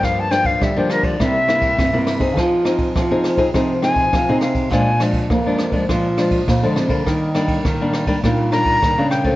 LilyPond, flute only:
\new Staff \with { instrumentName = "Flute" } { \time 4/4 \key bes \mixolydian \tempo 4 = 102 f''16 a''16 g''16 f''16 e''16 g'16 bes'16 d''16 e''2 | r2 r8 aes''4 f''8 | aes''8 r2. r8 | r2 r8 bes''4 g''8 | }